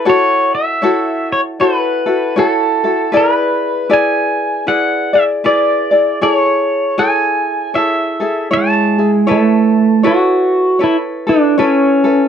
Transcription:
0.05 E4 F#4 A4 C#5
0.10 C#5
0.55 E5
0.82 E4 F#4 A4 C#5
1.32 C#5
1.60 E4 F#4 A4 B4 C#5
2.06 E4 F#4 A4
2.36 E4 F#4 A4 C#5
2.84 E4 F#4 A4
3.12 E4 G#4 B4 D5
3.17 B4
3.90 E4 G#4 B4 D5 G#5
4.67 E4 G#4 B4 D5 F#5
5.13 E4 G#4 D5 E5
5.44 E4 G#4 B4 D5
5.91 E4 G#4 D5
6.21 E4 G#4 A4 C#5 D5
6.34 C#5
6.98 E4 G#4 A4 C#5 G#5
7.74 E4 G#4 A4 C#5 E5
8.20 E4 G#4 A4
8.51 E4 C#5 A5
8.57 G#3
8.98 E4 G#4
9.27 E4 A4 B4 C#5
9.31 A3
10.03 E4 F#4 A4 B4 C#5
10.79 E4 A4 B4 C#5
10.84 E4
11.27 D4 E4 A4 B4
11.58 C#4 E4 A4 B4 C#5
12.04 E4 A4 B4

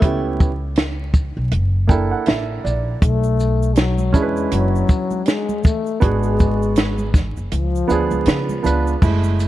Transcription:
Already playing: A3
0.00 C#2 B3 C#4 E4 G4, kick, closed hi-hat
0.40 kick, shaker
0.76 snare, closed hi-hat
1.14 kick, shaker
1.37 B1
1.51 F#1, closed hi-hat
1.87 A#3 D4 E4 A4 G5, kick, shaker
2.11 F#5
2.26 A1 E5, snare, closed hi-hat
2.64 A#1 D5, shaker
3.02 B1 A3, kick, closed hi-hat, shaker
3.23 shaker
3.39 shaker
3.62 shaker
3.76 F#3, snare, closed hi-hat, shaker
3.98 high conga, shaker
4.12 E2 G#3 C#4 D4 E4 G#4, kick, low conga, shaker
4.22 B4
4.37 shaker
4.52 F#1 F#3, closed hi-hat, high conga, shaker
4.76 shaker
4.89 kick, shaker
5.11 high conga, shaker
5.26 G#3, snare, closed hi-hat, shaker
5.49 high conga, shaker
5.63 A3, kick, low conga, shaker
5.66 shaker
5.86 shaker
6.00 G#1 G#3 B3 D4 F#4 G#4, kick, closed hi-hat, shaker
6.23 shaker
6.39 kick, shaker
6.62 shaker
6.76 snare, closed hi-hat, shaker
6.98 high conga, shaker
7.14 kick, snare, low conga, shaker
7.37 F#1, shaker
7.51 C#2 F3, closed hi-hat, high conga, shaker
7.75 shaker
7.88 D2 B3 D4 F4 G#4, shaker
8.11 C#2, high conga, shaker
8.26 C#3, snare, closed hi-hat, shaker
8.49 high conga, shaker
8.63 C#2 B3 D4 F4 B4, closed hi-hat, low conga, shaker
8.66 shaker
8.87 shaker
9.01 F#1 G#3 A3 E4, kick, crash, shaker
9.24 shaker
9.39 closed hi-hat, shaker

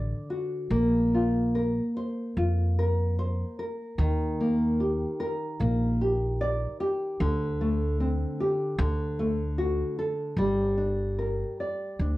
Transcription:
Already playing: A1 D3 D5
0.30 F#4
0.70 A#1 A#3
1.14 F4
1.55 A#4
1.96 C5
2.37 F2 F4
2.78 A#4
3.19 C5
3.59 A#4
3.98 D#2 D#3
4.41 A#3
4.80 G4
5.20 A#4
5.60 A#1 A#3
6.01 G4
6.41 D5
6.80 G4
7.20 D2 D3
7.61 A3
8.00 C4
8.40 G4
8.78 D2 D3
9.19 A3
9.58 F#4
9.99 A4
10.37 G1 G3
10.78 D4
11.19 A#4
11.60 D5
11.99 D2 D4

